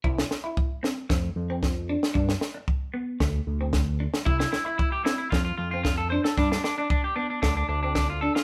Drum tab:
SD |-oo---o-o---o--o|-oo-----o---o--o|-oo---o-o---o--o|ooo-----o---o--o|
BD |o---o---o---o---|o---o---o---o---|o---o---o---o---|o---o---o---o---|